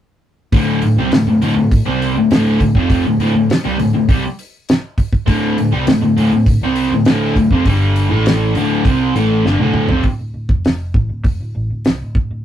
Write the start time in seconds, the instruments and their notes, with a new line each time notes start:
0.52 picked electric bass D1, overdriven electric guitar D2 A2 D3, kick, open hi-hat
0.82 picked electric bass D1, overdriven electric guitar D2 A2, open hi-hat
0.96 picked electric bass C2, overdriven electric guitar C3 G3
1.12 picked electric bass D1, overdriven electric guitar D2 A2, snare, open hi-hat
1.26 picked electric bass D1, overdriven electric guitar D2 A2
1.41 picked electric bass D1, overdriven electric guitar D2 A2, open hi-hat
1.56 picked electric bass D1, overdriven electric guitar D2 A2
1.71 kick, open hi-hat
1.85 picked electric bass C2, overdriven electric guitar C3 G3 C4
2.02 open hi-hat
2.16 picked electric bass D1, overdriven electric guitar D2 A2
2.31 picked electric bass D1, overdriven electric guitar D2 A2 D3, snare, open hi-hat
2.60 picked electric bass D1, overdriven electric guitar D2 A2, kick, open hi-hat
2.75 picked electric bass F1, overdriven electric guitar F2 C3 F3, kick
2.90 kick, open hi-hat
3.06 picked electric bass D1, overdriven electric guitar D2 A2
3.19 picked electric bass D1, overdriven electric guitar D2 A2, open hi-hat
3.34 picked electric bass D1, overdriven electric guitar D2 A2
3.49 muted overdriven electric guitar stroke, muted picked electric bass stroke, snare, open hi-hat
3.64 picked electric bass C2, overdriven electric guitar C3 G3
3.78 picked electric bass D1, overdriven electric guitar D2 A2, open hi-hat
3.93 picked electric bass D1, overdriven electric guitar D2 A2
4.09 picked electric bass C2, overdriven electric guitar C3 G3, kick, open hi-hat
4.39 open hi-hat
4.69 snare, open hi-hat
4.98 kick, open hi-hat
5.13 kick
5.26 picked electric bass D1, overdriven electric guitar D2 A2 D3, kick, open hi-hat
5.58 picked electric bass D1, overdriven electric guitar D2 A2, open hi-hat
5.72 picked electric bass C2, overdriven electric guitar C3 G3
5.87 picked electric bass D1, overdriven electric guitar D2 A2, snare, open hi-hat
6.02 picked electric bass D1, overdriven electric guitar D2 A2
6.17 picked electric bass D1, overdriven electric guitar D2 A2, open hi-hat
6.32 picked electric bass D1, overdriven electric guitar D2 A2
6.46 kick, open hi-hat
6.61 picked electric bass C2, overdriven electric guitar C3 G3 C4
6.76 open hi-hat
6.90 picked electric bass D1, overdriven electric guitar D2 A2
7.05 picked electric bass D1, overdriven electric guitar D2 A2 D3, snare, open hi-hat
7.35 picked electric bass D1, overdriven electric guitar D2 A2, kick, open hi-hat
7.51 picked electric bass F1, overdriven electric guitar F2 C3, kick
7.65 picked electric bass G1, overdriven electric guitar G2 D3 G3, kick, open hi-hat
7.96 open hi-hat
8.09 picked electric bass A1, overdriven electric guitar A2 E3 A3
8.26 snare, open hi-hat
8.55 picked electric bass D1, overdriven electric guitar D2 A2 D3, open hi-hat
8.84 picked electric bass C2, overdriven electric guitar C3 G3 C4, kick, open hi-hat
9.13 picked electric bass A1, overdriven electric guitar A2 E3 A3, open hi-hat
9.44 picked electric bass G1, overdriven electric guitar G2 D3, snare
9.58 picked electric bass D1, overdriven electric guitar D2 A2 D3, high tom
9.74 mid tom
9.88 picked electric bass F1, overdriven electric guitar F2 C3, floor tom
10.03 picked electric bass D1, kick, open hi-hat
10.19 picked electric bass D1
10.34 picked electric bass D1
10.49 picked electric bass F1, kick
10.65 snare, open hi-hat
10.94 picked electric bass A1, kick
11.09 picked electric bass D1
11.24 picked electric bass F1, kick, open hi-hat
11.40 picked electric bass D1
11.55 picked electric bass A1
11.70 picked electric bass D1
11.85 picked electric bass C2, snare, open hi-hat
12.02 picked electric bass D1
12.15 picked electric bass D1, kick
12.31 picked electric bass D1